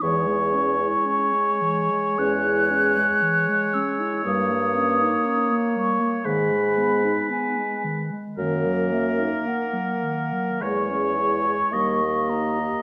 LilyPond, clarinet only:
\new Staff \with { instrumentName = "Clarinet" } { \time 4/4 \key dis \phrygian \tempo 4 = 56 e16 gis16 cis'16 e'16 cis'16 gis16 e16 gis16 cis'16 e'16 cis'16 gis16 e16 gis16 cis'16 e'16 | g16 ais16 cis'16 dis'16 cis'16 ais16 g16 ais16 dis16 gis16 b16 dis'16 b16 gis16 dis16 gis16 | dis16 fis16 ais16 dis'16 ais16 fis16 dis16 fis16 gis16 cis'16 e'16 gis'16 g16 ais16 dis'16 g'16 | }